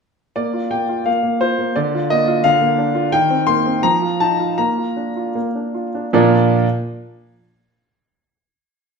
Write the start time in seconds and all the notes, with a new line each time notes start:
0.36 A#3 D5
0.53 F4
0.71 A#3 G5
0.89 F4
1.06 A#3 F5
1.23 A#3
1.41 F4 C5
1.59 A#3
1.76 D3 D5
1.95 F4
2.10 A#3 D#5
2.28 F4
2.44 D3 F5
2.62 A#3
2.78 D4
2.95 F4
3.12 D#3 G5
3.30 C4
3.47 A#3 C6
3.66 C4
3.83 F3 A#5
4.02 F4
4.20 D#4 A5
4.39 F4
4.58 A#3 A#5
4.78 F4
4.97 D4
5.17 F4
5.35 A#3
5.55 D4
5.74 F4
5.95 D4
6.13 A#2 F3 D4 F4 A#4 D5